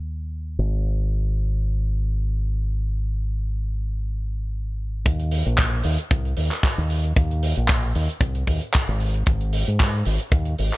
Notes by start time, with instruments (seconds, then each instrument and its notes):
Already playing: fingered electric bass D#2
0.59 fingered electric bass G#1
5.06 fingered electric bass D#2, kick, closed hi-hat
5.19 closed hi-hat
5.31 open hi-hat
5.46 fingered electric bass A#1, closed hi-hat
5.58 kick, clap, closed hi-hat
5.84 fingered electric bass D#2, open hi-hat
5.98 closed hi-hat
6.11 fingered electric bass C2, kick, closed hi-hat
6.25 closed hi-hat
6.37 fingered electric bass D#2, open hi-hat
6.51 clap, closed hi-hat
6.63 kick, clap, closed hi-hat
6.78 fingered electric bass D#2
6.90 open hi-hat
7.04 closed hi-hat
7.16 fingered electric bass D#2, kick, closed hi-hat
7.31 closed hi-hat
7.43 open hi-hat
7.56 fingered electric bass A#1, closed hi-hat
7.68 kick, clap, closed hi-hat
7.95 fingered electric bass D#2, open hi-hat
8.09 closed hi-hat
8.21 fingered electric bass C2, kick, closed hi-hat
8.35 closed hi-hat
8.47 fingered electric bass D#2, kick, open hi-hat
8.61 closed hi-hat
8.73 kick, clap, closed hi-hat
8.88 fingered electric bass G#1
9.00 open hi-hat
9.14 closed hi-hat
9.26 fingered electric bass G#1, kick, closed hi-hat
9.41 closed hi-hat
9.53 open hi-hat
9.67 fingered electric bass G#2, closed hi-hat
9.80 kick, clap, closed hi-hat
10.05 fingered electric bass G#1, open hi-hat
10.20 closed hi-hat
10.32 fingered electric bass D#2, kick, closed hi-hat
10.45 closed hi-hat
10.59 fingered electric bass G#1, open hi-hat
10.73 clap, closed hi-hat